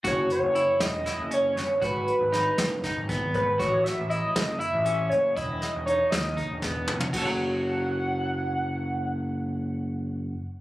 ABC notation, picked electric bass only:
X:1
M:7/8
L:1/16
Q:1/4=119
K:F#dor
V:1 name="Picked electric bass" clef=bass
F,,,2 z F,,,2 z E,,,2 z F,,,3 =G,,,2 | G,,,2 z G,,,2 z F,,,2 z G,,,3 G,,,2 | A,,,2 z A,,,2 z F,,,2 z A,,,3 F,,,2 | E,,,2 z E,,,2 z D,,2 z E,,,3 ^E,,,2 |
F,,,12- F,,,2- | F,,,12- F,,,2 |]